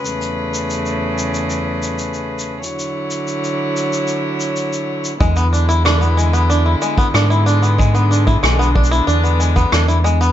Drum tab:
SH |x-x---x-x-x---x-x-x---x-x-x--x--|x-x---x-x-x---x-x-x---x-x-x---x-|x-x-x-x-x-x-x-x-x---x-x-x-x-x-x-|x-x-x-x-x-x--xx-x-x-x-x-x-x-x-x-|
SD |--------------------------------|--------------------------------|--------r---------------r-------|--------r---------------r-------|
BD |--------------------------------|--------------------------------|o---------------------o---------|o-----o-----o---------o---------|